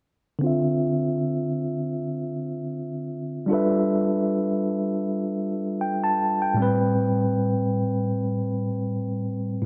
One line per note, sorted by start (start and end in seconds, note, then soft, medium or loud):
0.39 3.44 D3 medium
0.39 3.45 C4 medium
0.44 3.47 F4 medium
0.44 3.48 E5 medium
3.46 6.13 G3 medium
3.46 6.14 D4 medium
3.46 6.15 F4 medium
3.51 6.15 A4 medium
3.51 6.16 B4 medium
3.51 6.17 E5 medium
5.81 6.02 G5 medium
6.04 6.40 A5 medium
6.42 6.78 G5 medium
6.54 9.59 A2 medium
6.54 9.61 G3 medium
6.59 9.62 C4 medium
6.59 9.63 B4 medium
9.62 9.65 A2 medium